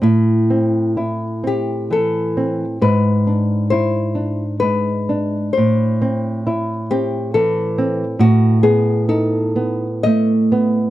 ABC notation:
X:1
M:3/4
L:1/8
Q:1/4=66
K:Am
V:1 name="Nylon-string guitar"
E3 G A2 | B2 c2 B2 | c3 G A2 | ^F ^G A2 ^d2 |]
V:2 name="Nylon-string guitar"
A,, C E C E, C | ^G,, D E D ^G, D | A,, C E C E, C | A,, B, ^D B, A, B, |]